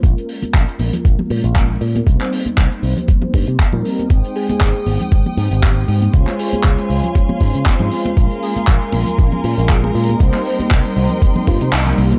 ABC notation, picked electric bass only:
X:1
M:4/4
L:1/16
Q:"Swing 16ths" 1/4=118
K:Bbdor
V:1 name="Picked electric bass" clef=bass
B,,, z3 B,,, z B,,, z B,,, z B,, B,,,3 B,, z | C,, z3 C,, z C,, z3 G,, C, z B,, z2 | A,,, z3 A,,, z A,,, z A,,, z A,, A,,,3 A,, z | D,, z3 D,, z D,, z3 A,, D, z A,, z2 |
B,,, z3 B,,, z B,,, z B,,, z B,, B,,,3 B,, z | C,, z3 C,, z C,, z3 G,, C, C,, z C,, C, |]